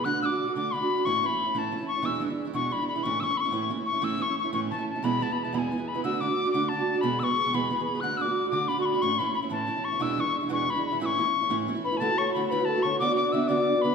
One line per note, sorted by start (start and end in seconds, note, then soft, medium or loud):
0.04 0.20 D3 medium
0.04 0.21 A3 medium
0.04 0.22 D4 medium
0.04 0.22 F#4 medium
0.04 0.22 F#6 loud
0.22 0.30 D3 medium
0.22 0.30 A3 medium
0.22 0.29 D4 medium
0.22 0.28 F#4 medium
0.22 0.52 D6 medium
0.22 0.27 E6 medium
0.29 0.47 A3 soft
0.29 0.47 D4 soft
0.29 0.46 F#4 soft
0.47 0.55 A3 soft
0.47 0.56 D4 soft
0.47 0.55 F#4 soft
0.55 0.72 D3 medium
0.55 0.73 A3 medium
0.55 0.73 D4 medium
0.55 0.73 F#4 medium
0.55 0.75 D6 medium
0.73 0.81 D3 medium
0.73 0.81 A3 medium
0.73 0.82 D4 medium
0.73 0.80 F#4 medium
0.73 1.07 B5 medium
0.81 0.98 A3 soft
0.81 0.97 D4 soft
0.81 0.96 F#4 soft
0.97 1.05 A3 soft
0.97 1.05 D4 medium
0.97 1.05 F#4 soft
1.05 1.22 A2 medium
1.05 1.21 E3 medium
1.05 1.22 A3 medium
1.05 1.23 C#4 medium
1.05 1.23 E4 medium
1.05 1.21 C#6 loud
1.21 1.30 E3 medium
1.21 1.31 A3 medium
1.21 1.30 C#4 medium
1.21 1.29 E4 medium
1.21 1.27 C#6 medium
1.26 1.44 E4 soft
1.26 1.55 B5 medium
1.31 1.46 A3 soft
1.31 1.45 C#4 soft
1.45 1.53 A3 soft
1.45 1.54 C#4 soft
1.45 1.54 E4 soft
1.54 1.72 A2 medium
1.54 1.70 E3 medium
1.54 1.71 A3 medium
1.54 1.72 C#4 medium
1.54 1.72 E4 medium
1.54 1.59 B5 medium
1.58 1.87 A5 medium
1.71 1.80 E3 soft
1.71 1.80 A3 medium
1.71 1.79 C#4 medium
1.71 1.77 E4 medium
1.79 1.97 A3 soft
1.79 1.96 C#4 soft
1.79 1.95 E4 medium
1.88 2.07 C#6 medium
1.96 2.03 A3 soft
1.96 2.03 C#4 soft
1.96 2.02 E4 soft
2.02 2.21 E2 medium
2.02 2.21 B2 medium
2.02 2.18 E3 medium
2.02 2.20 G#3 medium
2.02 2.20 D4 medium
2.02 2.21 E4 medium
2.02 2.22 E6 medium
2.20 2.29 E3 medium
2.20 2.29 G#3 medium
2.20 2.29 D4 medium
2.20 2.28 E4 medium
2.29 2.46 E3 soft
2.29 2.46 G#3 soft
2.29 2.45 D4 soft
2.29 2.44 E4 medium
2.45 2.52 E3 soft
2.45 2.53 G#3 soft
2.45 2.53 D4 soft
2.45 2.54 E4 medium
2.53 2.71 E2 medium
2.53 2.71 B2 medium
2.53 2.69 E3 medium
2.53 2.70 G#3 medium
2.53 2.70 D4 medium
2.53 2.71 E4 medium
2.53 2.74 C#6 medium
2.70 2.79 E3 medium
2.70 2.80 G#3 medium
2.70 2.80 D4 medium
2.70 2.80 E4 medium
2.70 2.88 B5 loud
2.81 2.96 E3 soft
2.81 2.96 G#3 soft
2.81 2.95 D4 soft
2.81 2.94 E4 soft
2.88 3.05 B5 medium
2.96 3.04 E3 soft
2.96 3.05 G#3 soft
2.96 3.04 D4 medium
2.96 3.04 E4 medium
3.03 3.21 A2 medium
3.03 3.20 E3 medium
3.03 3.22 A3 medium
3.03 3.22 C#4 medium
3.03 3.22 E4 medium
3.03 3.21 C#6 loud
3.20 3.29 E3 medium
3.20 3.29 A3 medium
3.20 3.29 C#4 medium
3.20 3.38 C#6 loud
3.20 3.25 E6 medium
3.24 3.27 E4 medium
3.24 3.43 E4 soft
3.30 3.46 A3 soft
3.30 3.45 C#4 soft
3.37 3.42 B5 medium
3.37 3.71 C#6 loud
3.44 3.51 A3 soft
3.44 3.51 C#4 medium
3.44 3.52 E4 medium
3.51 3.70 A2 medium
3.51 3.68 E3 medium
3.51 3.69 A3 medium
3.51 3.69 C#4 medium
3.51 3.70 E4 medium
3.69 3.78 E3 medium
3.69 3.78 A3 medium
3.69 3.77 C#4 medium
3.69 3.76 E4 medium
3.77 3.94 A3 soft
3.77 3.93 C#4 soft
3.77 3.92 E4 medium
3.86 4.06 C#6 medium
3.93 4.01 A3 soft
3.93 4.01 C#4 medium
3.93 4.01 E4 medium
4.01 4.20 A2 medium
4.01 4.17 E3 medium
4.01 4.17 A3 medium
4.01 4.18 C#4 medium
4.01 4.19 E4 medium
4.01 4.24 E6 loud
4.18 4.28 E3 soft
4.18 4.28 A3 medium
4.18 4.28 C#4 medium
4.18 4.26 E4 medium
4.18 4.38 C#6 medium
4.28 4.44 A3 soft
4.28 4.44 C#4 soft
4.28 4.43 E4 soft
4.39 4.53 C#6 medium
4.44 4.52 A3 soft
4.44 4.52 C#4 medium
4.44 4.52 E4 medium
4.53 4.70 A2 medium
4.53 4.70 E3 medium
4.53 4.71 A3 medium
4.53 4.71 C#4 medium
4.53 4.71 E4 medium
4.53 4.60 C#6 medium
4.71 4.79 E3 medium
4.71 4.79 A3 medium
4.71 4.78 C#4 medium
4.71 4.77 E4 medium
4.71 4.86 A5 medium
4.78 4.96 A3 soft
4.78 4.95 C#4 soft
4.78 4.94 E4 medium
4.90 5.06 A5 medium
4.95 5.03 A3 soft
4.95 5.04 C#4 soft
4.95 5.03 E4 soft
5.03 5.20 E2 medium
5.03 5.21 B2 medium
5.03 5.19 E3 medium
5.03 5.20 G#3 medium
5.03 5.21 B3 medium
5.03 5.21 E4 medium
5.03 5.24 B5 loud
5.20 5.28 E3 medium
5.20 5.29 G#3 medium
5.20 5.29 B3 medium
5.20 5.29 E4 medium
5.20 5.34 A5 medium
5.30 5.46 E3 soft
5.30 5.46 G#3 soft
5.30 5.44 B3 soft
5.30 5.43 E4 soft
5.30 5.45 B5 medium
5.44 5.53 E3 soft
5.44 5.53 G#3 soft
5.44 5.53 B3 soft
5.44 5.53 E4 medium
5.44 5.56 A5 medium
5.53 5.70 E2 medium
5.53 5.70 B2 medium
5.53 5.70 E3 medium
5.53 5.71 G#3 medium
5.53 5.71 B3 medium
5.53 5.71 E4 medium
5.53 5.60 B5 medium
5.59 5.90 G#5 medium
5.71 5.78 E3 soft
5.71 5.78 G#3 medium
5.71 5.77 B3 medium
5.71 5.76 E4 medium
5.77 5.95 E3 soft
5.77 5.95 G#3 soft
5.77 5.94 B3 medium
5.77 5.93 E4 soft
5.88 6.03 B5 medium
5.94 6.04 E3 soft
5.94 6.03 G#3 soft
5.94 6.03 B3 medium
5.94 6.03 E4 medium
6.04 6.19 D3 medium
6.04 6.21 A3 medium
6.04 6.21 D4 medium
6.04 6.21 F#4 medium
6.04 6.22 E6 loud
6.21 6.28 D3 medium
6.21 6.29 A3 medium
6.21 6.28 D4 medium
6.21 6.27 F#4 medium
6.21 6.51 D6 medium
6.28 6.45 A3 soft
6.28 6.45 D4 soft
6.28 6.44 F#4 soft
6.45 6.53 A3 soft
6.45 6.53 D4 medium
6.45 6.53 F#4 medium
6.52 6.70 D3 medium
6.52 6.70 A3 medium
6.52 6.71 D4 medium
6.52 6.71 F#4 medium
6.52 6.70 D6 medium
6.69 6.78 D3 medium
6.69 6.79 A3 soft
6.69 6.79 D4 soft
6.69 7.03 A5 medium
6.73 6.77 F#4 medium
6.79 6.96 A3 soft
6.79 6.95 D4 soft
6.79 6.93 F#4 soft
6.95 7.03 A3 soft
6.95 7.03 D4 medium
6.95 7.02 F#4 medium
7.01 7.20 E2 medium
7.01 7.20 B2 medium
7.01 7.20 E3 medium
7.01 7.20 G#3 medium
7.01 7.21 B3 medium
7.01 7.20 G#4 medium
7.01 7.21 B5 loud
7.19 7.28 E3 medium
7.19 7.28 G#3 medium
7.19 7.28 B3 medium
7.19 7.27 G#4 medium
7.19 7.25 E6 medium
7.24 7.51 C#6 medium
7.28 7.45 E3 soft
7.28 7.45 G#3 soft
7.28 7.44 B3 soft
7.28 7.43 G#4 soft
7.44 7.52 E3 soft
7.44 7.53 G#3 soft
7.44 7.53 B3 soft
7.44 7.52 G#4 medium
7.51 7.70 E2 medium
7.51 7.70 B2 medium
7.51 7.69 E3 medium
7.51 7.70 G#3 medium
7.51 7.71 B3 medium
7.51 7.71 G#4 medium
7.51 7.84 B5 medium
7.51 7.56 C#6 medium
7.71 7.78 E3 medium
7.71 7.78 G#3 medium
7.71 7.78 B3 soft
7.71 7.77 G#4 medium
7.78 7.95 E3 soft
7.78 7.95 G#3 soft
7.78 7.95 B3 soft
7.78 7.94 G#4 soft
7.85 8.02 B5 medium
7.95 8.02 E3 soft
7.95 8.03 G#3 soft
7.95 8.03 B3 soft
7.95 8.02 G#4 soft
8.01 8.18 D3 medium
8.01 8.19 A3 medium
8.01 8.20 D4 medium
8.01 8.20 F#4 medium
8.01 8.19 F#6 loud
8.17 8.27 D3 medium
8.17 8.28 A3 medium
8.17 8.28 D4 medium
8.17 8.23 E6 medium
8.22 8.27 F#4 medium
8.22 8.49 D6 medium
8.28 8.45 A3 soft
8.28 8.45 D4 soft
8.28 8.44 F#4 soft
8.45 8.52 A3 soft
8.45 8.52 D4 soft
8.45 8.52 F#4 soft
8.50 8.68 D3 medium
8.50 8.69 A3 medium
8.50 8.70 D4 medium
8.50 8.70 F#4 medium
8.50 8.70 D6 medium
8.68 8.77 D3 medium
8.68 8.78 A3 medium
8.68 8.77 D4 medium
8.68 8.80 B5 medium
8.72 8.77 F#4 medium
8.78 8.95 A3 soft
8.78 8.94 D4 soft
8.78 8.93 F#4 soft
8.78 8.87 C#6 medium
8.85 9.03 B5 medium
8.94 9.02 A3 soft
8.94 9.02 D4 medium
8.94 9.02 F#4 medium
9.02 9.19 A2 medium
9.02 9.18 E3 medium
9.02 9.19 A3 medium
9.02 9.19 C#4 medium
9.02 9.20 E4 medium
9.02 9.20 C#6 loud
9.19 9.27 E3 medium
9.19 9.28 A3 medium
9.19 9.27 C#4 medium
9.19 9.26 E4 medium
9.19 9.34 B5 medium
9.27 9.43 A3 soft
9.27 9.43 C#4 soft
9.27 9.41 E4 soft
9.34 9.40 B5 medium
9.42 9.49 A3 soft
9.42 9.50 C#4 medium
9.42 9.50 E4 medium
9.49 9.68 A2 medium
9.49 9.65 E3 medium
9.49 9.66 A3 medium
9.49 9.67 C#4 medium
9.49 9.68 E4 medium
9.49 9.86 A5 medium
9.67 9.76 E3 medium
9.67 9.76 A3 medium
9.67 9.76 C#4 medium
9.67 9.75 E4 medium
9.76 9.93 A3 soft
9.76 9.92 C#4 soft
9.76 9.91 E4 soft
9.84 10.04 C#6 medium
9.92 10.00 A3 soft
9.92 10.00 C#4 soft
9.92 10.00 E4 medium
9.99 10.18 E2 medium
9.99 10.18 B2 medium
9.99 10.16 E3 medium
9.99 10.17 G#3 medium
9.99 10.18 D4 medium
9.99 10.18 E4 medium
9.99 10.22 E6 loud
10.17 10.26 E3 medium
10.17 10.26 G#3 medium
10.17 10.25 D4 medium
10.17 10.24 E4 medium
10.17 10.36 C#6 medium
10.26 10.42 E3 soft
10.26 10.42 G#3 soft
10.26 10.41 D4 soft
10.26 10.40 E4 soft
10.41 10.48 E3 soft
10.41 10.49 G#3 soft
10.41 10.49 D4 soft
10.41 10.50 E4 medium
10.49 10.67 E2 medium
10.49 10.68 B2 medium
10.49 10.66 E3 medium
10.49 10.67 G#3 medium
10.49 10.67 D4 medium
10.49 10.68 E4 medium
10.53 10.72 C#6 medium
10.67 10.76 E3 medium
10.67 10.76 G#3 medium
10.67 10.76 D4 medium
10.67 10.75 E4 medium
10.67 10.85 B5 medium
10.76 10.92 E3 soft
10.76 10.91 G#3 soft
10.76 10.91 D4 soft
10.76 10.90 E4 soft
10.86 11.01 B5 medium
10.91 11.00 E3 soft
10.91 11.01 G#3 soft
10.91 11.01 D4 soft
10.91 11.00 E4 medium
11.00 11.18 A2 medium
11.00 11.16 E3 medium
11.00 11.17 A3 medium
11.00 11.18 C#4 medium
11.00 11.18 E4 medium
11.00 11.07 E6 medium
11.06 11.56 C#6 medium
11.18 11.26 E3 medium
11.18 11.26 A3 medium
11.18 11.26 C#4 medium
11.18 11.24 E4 medium
11.25 11.43 A3 soft
11.25 11.41 C#4 soft
11.25 11.40 E4 soft
11.41 11.49 A3 medium
11.41 11.50 C#4 medium
11.41 11.50 E4 medium
11.49 11.67 A2 medium
11.49 11.66 E3 medium
11.49 11.67 A3 medium
11.49 11.67 C#4 medium
11.49 11.68 E4 medium
11.67 11.76 E3 medium
11.67 11.76 A3 medium
11.67 11.75 C#4 medium
11.67 11.74 E4 medium
11.75 11.93 A3 medium
11.75 11.92 C#4 soft
11.75 11.91 E4 medium
11.84 11.99 B4 medium
11.84 11.99 B5 medium
11.92 12.00 A3 medium
11.92 12.01 C#4 medium
11.92 12.00 E4 medium
11.97 12.09 D3 medium
11.97 12.16 A4 medium
11.97 12.01 G#5 medium
11.97 12.20 A5 loud
12.01 12.09 A3 medium
12.01 12.09 E4 medium
12.01 12.08 F#4 medium
12.09 12.27 A3 soft
12.09 12.27 E4 soft
12.09 12.26 F#4 soft
12.18 12.53 C#5 medium
12.18 12.33 C#6 medium
12.27 12.35 A3 soft
12.27 12.35 E4 soft
12.27 12.34 F#4 soft
12.33 12.50 D3 medium
12.33 12.50 A3 medium
12.33 12.51 E4 medium
12.33 12.51 F#4 medium
12.33 12.48 B5 medium
12.48 12.59 D3 medium
12.48 12.59 A3 medium
12.48 12.71 B4 medium
12.48 12.67 B5 loud
12.52 12.59 E4 medium
12.52 12.58 F#4 medium
12.59 12.77 A3 soft
12.59 12.76 E4 soft
12.59 12.74 F#4 soft
12.65 12.87 A4 medium
12.65 12.84 A5 medium
12.75 12.83 A3 soft
12.75 12.84 E4 soft
12.75 12.83 F#4 medium
12.83 12.99 D3 medium
12.83 13.00 A3 soft
12.83 13.01 E4 medium
12.83 13.01 C#5 medium
12.83 12.99 C#6 medium
12.87 13.01 F#4 medium
12.99 13.09 D3 medium
12.99 13.09 B3 medium
12.99 13.09 D4 medium
12.99 13.09 F#4 medium
12.99 13.16 D5 medium
12.99 13.15 D6 loud
13.10 13.27 B3 soft
13.10 13.26 D4 soft
13.10 13.25 F#4 medium
13.16 13.35 D5 medium
13.16 13.34 D6 medium
13.26 13.32 B3 soft
13.26 13.33 D4 soft
13.26 13.33 F#4 soft
13.32 13.47 D3 medium
13.32 13.48 B3 medium
13.32 13.49 D4 medium
13.32 13.49 F#4 medium
13.32 13.50 E5 medium
13.32 13.49 E6 medium
13.48 13.58 D3 medium
13.48 13.58 B3 medium
13.48 13.58 D4 medium
13.48 13.56 F#4 medium
13.48 13.86 D5 medium
13.48 13.83 D6 medium
13.57 13.76 B3 soft
13.57 13.75 D4 soft
13.57 13.74 F#4 medium
13.75 13.84 B3 soft
13.75 13.83 D4 soft
13.75 13.83 F#4 medium
13.82 13.95 D3 soft
13.82 13.95 B3 medium
13.82 13.95 D4 medium
13.82 13.95 B4 medium
13.82 13.95 B5 medium
13.86 13.95 F#4 medium